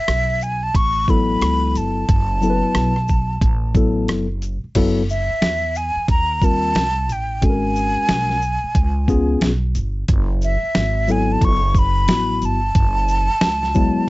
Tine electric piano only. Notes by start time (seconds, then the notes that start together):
1.09 F#3 B3 E4 A4
2.41 F#3 B3 E4 A4
2.50 B4
3.75 F#3 B3 E4 A4
4.75 F#3 B3 E4 A4
6.42 G3 C4 F4 A#4
7.42 G#3 C#4 F#4 A4
7.50 A#4
9.08 B3 C#4 F4 G#4
11.08 F#3 B3 E4 A4
12.07 F#3 B3 E4 F#4
13.74 F#3 G#3 B3 E4